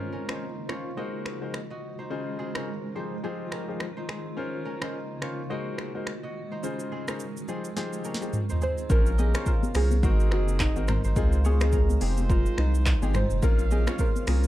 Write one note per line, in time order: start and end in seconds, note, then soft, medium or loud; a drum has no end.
0.00 0.96 C#3 medium
0.00 0.96 A#3 medium
0.00 0.19 C4 medium
0.00 0.25 C#4 medium
0.00 0.29 D#4 medium
0.00 0.25 F4 medium
0.00 0.96 F4 medium
0.00 0.80 G#4 medium
0.00 0.25 A#4 medium
0.00 0.19 C5 medium
0.00 0.25 C5 medium
0.00 7.44 C5 medium
0.12 0.35 C#4 medium
0.12 1.40 A#4 medium
0.28 0.43 C#4 medium
0.28 1.92 D#4 medium
0.28 0.44 F4 medium
0.28 0.44 A#4 medium
0.28 0.75 C5 medium
0.28 0.44 C5 medium
0.28 finger snap medium
0.28 cross-stick loud
0.69 0.87 C#4 medium
0.69 0.88 F4 medium
0.69 1.04 F4 medium
0.69 0.88 A#4 medium
0.69 0.88 C5 medium
0.69 1.84 C#5 medium
0.69 finger snap medium
0.69 cross-stick medium
0.97 2.09 D#3 medium
0.97 1.38 G#3 medium
0.97 4.34 G#3 medium
0.97 1.38 D#4 medium
0.97 2.09 F#4 medium
0.97 1.38 F#4 medium
0.97 1.71 F#4 medium
0.97 1.38 A#4 medium
0.97 1.38 C5 medium
0.97 1.70 D#5 medium
1.26 finger snap medium
1.26 cross-stick medium
1.42 1.57 G#3 medium
1.42 1.57 D#4 medium
1.42 1.57 F#4 medium
1.42 1.57 A#4 medium
1.42 1.57 C5 medium
1.54 finger snap medium
1.54 cross-stick medium
1.70 3.17 F#4 medium
1.70 2.77 D#5 medium
1.99 2.96 D#4 soft
1.99 2.62 C5 medium
2.10 2.51 C#3 medium
2.10 2.51 D#4 medium
2.10 2.51 F4 medium
2.10 5.47 F4 medium
2.10 2.51 G#4 medium
2.10 2.51 C5 loud
2.39 2.62 C4 medium
2.39 3.23 G#4 medium
2.55 2.70 C#3 medium
2.55 3.02 C#4 medium
2.55 2.70 D#4 medium
2.55 2.70 F4 medium
2.55 2.70 G#4 medium
2.55 3.52 A#4 medium
2.55 2.70 C5 medium
2.55 finger snap medium
2.55 cross-stick loud
2.95 4.36 D#3 medium
2.95 3.14 F3 medium
2.95 3.14 D#4 medium
2.95 3.97 D#4 medium
2.95 3.14 G4 medium
2.95 3.14 G#4 medium
2.95 3.59 C5 medium
2.95 3.14 C5 medium
3.23 3.64 F3 medium
3.23 3.59 C4 medium
3.23 3.64 D#4 medium
3.23 3.65 G4 medium
3.23 3.65 G#4 medium
3.23 4.08 G#4 medium
3.23 3.65 C5 medium
3.52 4.03 C#4 medium
3.52 4.65 A#4 medium
3.52 finger snap medium
3.52 cross-stick medium
3.68 3.83 F3 medium
3.68 3.83 D#4 medium
3.68 3.83 G4 medium
3.68 3.83 G#4 medium
3.68 3.83 C5 medium
3.80 finger snap medium
3.80 cross-stick loud
3.97 4.82 D#4 medium
3.97 4.72 C5 medium
4.09 4.72 C4 medium
4.09 5.45 G#4 medium
4.09 finger snap medium
4.09 cross-stick medium
4.37 5.49 C#3 medium
4.37 5.49 A#3 medium
4.37 4.78 C#4 medium
4.37 4.78 F4 medium
4.37 4.78 A#4 medium
4.37 4.78 C5 loud
4.65 4.88 C#4 medium
4.65 5.93 A#4 medium
4.81 4.96 C#4 medium
4.81 6.45 D#4 medium
4.81 4.96 F4 medium
4.81 4.97 A#4 medium
4.81 4.97 C5 medium
4.81 5.28 C5 medium
4.81 finger snap medium
4.81 cross-stick loud
5.22 5.40 C#4 medium
5.22 5.40 F4 medium
5.22 5.57 F4 medium
5.22 5.41 A#4 medium
5.22 5.41 C5 medium
5.22 6.37 C#5 medium
5.22 finger snap medium
5.22 cross-stick medium
5.50 6.62 D#3 medium
5.50 5.91 G#3 medium
5.50 8.86 G#3 medium
5.50 5.91 D#4 medium
5.50 5.91 F#4 medium
5.50 6.62 F#4 medium
5.50 6.24 F#4 medium
5.50 5.91 A#4 medium
5.50 5.91 C5 medium
5.50 6.23 D#5 medium
5.78 finger snap medium
5.78 cross-stick medium
5.95 6.10 G#3 medium
5.95 6.10 D#4 medium
5.95 6.10 F#4 medium
5.95 6.10 A#4 medium
5.95 6.10 C5 medium
6.07 finger snap medium
6.07 cross-stick medium
6.23 7.70 F#4 medium
6.23 7.30 D#5 medium
6.52 8.15 D#4 medium
6.52 7.15 C5 medium
6.63 7.04 C#3 medium
6.63 7.04 D#4 medium
6.63 7.04 F4 medium
6.63 7.04 G#4 medium
6.63 7.04 C5 loud
6.63 shaker medium
6.80 shaker soft
6.92 7.15 C4 medium
6.92 7.48 G#4 medium
7.08 7.23 C#3 medium
7.08 7.55 C#4 medium
7.08 7.23 D#4 medium
7.08 7.23 F4 medium
7.08 7.23 G#4 medium
7.08 8.05 A#4 medium
7.08 7.23 C5 medium
7.08 finger snap medium
7.08 cross-stick loud
7.08 shaker medium
7.20 shaker medium
7.37 shaker medium
7.48 8.88 D#3 medium
7.48 7.67 F3 medium
7.48 8.88 C4 medium
7.48 7.77 C4 medium
7.48 7.67 D#4 medium
7.48 8.88 F4 medium
7.48 7.67 G4 medium
7.48 7.76 G#4 medium
7.48 7.67 G#4 medium
7.48 7.67 C5 medium
7.48 shaker soft
7.64 shaker medium
7.76 8.17 F3 medium
7.76 8.12 C4 medium
7.76 8.17 D#4 medium
7.76 8.17 G4 medium
7.76 8.61 G#4 medium
7.76 8.17 G#4 medium
7.76 8.18 C5 loud
7.76 snare soft
7.76 shaker medium
7.93 shaker soft
8.04 8.56 C#4 medium
8.04 9.32 A#4 medium
8.04 shaker medium
8.14 snare medium
8.21 8.36 F3 medium
8.21 8.36 D#4 medium
8.21 8.36 G4 medium
8.21 8.36 G#4 medium
8.21 8.36 C5 medium
8.21 shaker soft
8.33 mid tom medium
8.33 shaker medium
8.50 10.04 D#4 medium
8.50 9.41 C5 medium
8.50 floor tom medium
8.50 shaker soft
8.61 9.41 C4 medium
8.61 9.25 G#4 medium
8.61 8.89 C5 loud
8.61 shaker soft
8.78 shaker soft
8.89 9.34 A#1 loud
8.89 10.02 C#3 medium
8.89 9.73 F3 medium
8.89 10.02 A#3 medium
8.89 9.08 C#4 medium
8.89 9.73 C#4 medium
8.89 9.08 F4 medium
8.89 10.02 F4 medium
8.89 9.08 A#4 medium
8.89 9.73 A#4 loud
8.89 9.17 A#4 loud
8.89 13.39 C5 medium
8.89 9.09 C5 loud
8.89 kick loud
8.89 shaker medium
9.06 shaker medium
9.18 10.60 G4 medium
9.18 9.45 G#4 loud
9.18 10.25 D#5 medium
9.18 high conga medium
9.18 shaker medium
9.34 9.49 C#4 medium
9.34 9.49 F4 medium
9.34 9.47 F4 medium
9.34 9.49 A#4 medium
9.34 9.50 C5 medium
9.34 9.53 C#5 medium
9.34 finger snap medium
9.34 cross-stick loud
9.34 high conga medium
9.34 shaker medium
9.46 10.99 F4 medium
9.46 9.60 A#4 loud
9.46 9.82 C5 medium
9.46 kick medium
9.46 shaker medium
9.63 high conga medium
9.63 shaker medium
9.74 10.05 C2 loud
9.74 9.93 C#4 medium
9.74 10.09 C#4 medium
9.74 9.93 F4 medium
9.74 10.05 G#4 medium
9.74 9.93 A#4 medium
9.74 10.60 A#4 medium
9.74 9.93 C5 medium
9.74 finger snap medium
9.74 cross-stick loud
9.74 open hi-hat medium
9.74 shaker medium
9.91 high conga medium
9.91 shaker medium
10.03 10.33 G#1 loud
10.03 11.15 D#3 medium
10.03 10.86 D#3 medium
10.03 11.99 G#3 medium
10.03 10.69 C4 medium
10.03 10.86 C4 medium
10.03 10.69 D#4 medium
10.03 10.60 D#4 medium
10.03 11.15 F#4 medium
10.03 10.70 F#4 medium
10.03 10.32 F#4 loud
10.03 10.86 G#4 medium
10.03 10.70 A#4 loud
10.03 10.88 C5 medium
10.03 kick loud
10.03 low conga medium
10.03 shaker medium
10.20 shaker medium
10.31 10.67 F#1 medium
10.31 10.61 F#4 medium
10.31 finger snap medium
10.31 cross-stick medium
10.48 shaker medium
10.60 10.89 D#4 medium
10.60 10.90 D#4 medium
10.60 11.73 A#4 medium
10.60 finger snap medium
10.60 kick medium
10.60 cross-stick loud
10.60 clap loud
10.60 shaker medium
10.76 10.98 G#1 medium
10.76 10.91 C4 medium
10.76 10.91 D#4 medium
10.76 10.91 F#4 medium
10.76 10.91 A#4 medium
10.76 high conga medium
10.76 shaker medium
10.88 11.05 D#4 medium
10.88 11.47 A#4 loud
10.88 11.04 C5 medium
10.88 finger snap medium
10.88 cross-stick medium
10.88 mid tom medium
10.88 high conga medium
10.88 low conga medium
10.88 shaker soft
11.04 11.14 G#1 medium
11.04 11.62 D#4 medium
11.04 11.51 C5 medium
11.04 shaker medium
11.16 11.97 C#2 loud
11.16 11.72 G#3 medium
11.16 11.35 C4 loud
11.16 11.35 D#4 medium
11.16 11.72 F4 medium
11.16 11.35 F4 medium
11.16 14.47 F4 loud
11.16 11.35 G#4 loud
11.16 11.72 C5 medium
11.16 kick loud
11.16 shaker medium
11.33 shaker medium
11.45 12.97 F4 medium
11.45 11.98 G#4 medium
11.45 11.67 C#5 medium
11.45 high conga medium
11.45 shaker medium
11.61 11.76 C4 medium
11.61 11.76 D#4 medium
11.61 12.30 D#4 medium
11.61 11.76 F4 medium
11.61 11.76 G#4 medium
11.61 11.80 C5 medium
11.61 finger snap medium
11.61 cross-stick loud
11.61 high conga medium
11.61 shaker medium
11.73 12.08 C#4 medium
11.73 12.29 A#4 medium
11.73 kick medium
11.73 shaker medium
11.89 high conga medium
11.89 shaker medium
12.01 12.46 F1 loud
12.01 13.41 D#3 medium
12.01 12.20 G#3 medium
12.01 13.12 G#3 medium
12.01 13.41 G#3 medium
12.01 12.20 C4 medium
12.01 13.03 C4 medium
12.01 12.20 D#4 medium
12.01 13.12 F4 medium
12.01 12.20 G4 medium
12.01 13.02 G#4 medium
12.01 13.12 C5 loud
12.01 open hi-hat medium
12.01 shaker medium
12.17 high conga medium
12.17 shaker medium
12.30 13.15 D#4 medium
12.30 12.59 F4 loud
12.30 13.57 A#4 medium
12.30 kick loud
12.30 low conga medium
12.30 shaker medium
12.46 shaker medium
12.58 12.93 C2 medium
12.58 13.17 D#4 loud
12.58 finger snap medium
12.58 cross-stick medium
12.75 shaker medium
12.86 finger snap medium
12.86 kick medium
12.86 cross-stick loud
12.86 clap loud
12.86 shaker medium
13.02 13.25 G#1 medium
13.02 13.17 G#3 medium
13.02 13.17 C4 medium
13.02 13.93 C4 medium
13.02 13.17 D#4 medium
13.02 13.17 G4 medium
13.02 13.78 G#4 medium
13.02 high conga medium
13.02 shaker medium
13.14 14.47 D#4 medium
13.14 13.93 C5 medium
13.14 13.44 C5 loud
13.14 finger snap medium
13.14 cross-stick medium
13.14 mid tom medium
13.14 high conga medium
13.14 low conga medium
13.14 shaker medium
13.30 13.40 F1 medium
13.30 shaker medium
13.42 13.87 A#1 loud
13.42 14.47 C#3 medium
13.42 13.61 A#3 loud
13.42 14.47 A#3 medium
13.42 13.61 C4 medium
13.42 14.26 C#4 medium
13.42 13.61 C#4 medium
13.42 13.61 F4 loud
13.42 13.70 A#4 loud
13.42 14.26 C5 medium
13.42 14.47 C5 medium
13.42 14.26 F5 loud
13.42 kick loud
13.42 shaker medium
13.59 shaker medium
13.71 14.47 G4 medium
13.71 14.01 G#4 loud
13.71 14.47 D#5 medium
13.71 high conga medium
13.71 shaker medium
13.87 14.02 A#3 medium
13.87 14.02 C4 medium
13.87 14.02 C#4 medium
13.87 14.02 F4 medium
13.87 14.00 F4 medium
13.87 14.05 C#5 medium
13.87 finger snap loud
13.87 cross-stick loud
13.87 high conga medium
13.87 shaker medium
13.99 14.47 F4 medium
13.99 14.29 A#4 loud
13.99 14.34 C5 medium
13.99 kick medium
13.99 shaker medium
14.16 high conga medium
14.16 shaker medium
14.27 14.47 C2 loud
14.27 14.46 A#3 medium
14.27 14.46 C4 medium
14.27 14.46 C#4 medium
14.27 14.47 C#4 medium
14.27 14.46 F4 medium
14.27 14.47 G#4 medium
14.27 14.47 A#4 medium
14.27 finger snap medium
14.27 cross-stick loud
14.27 open hi-hat medium
14.27 shaker medium
14.43 shaker medium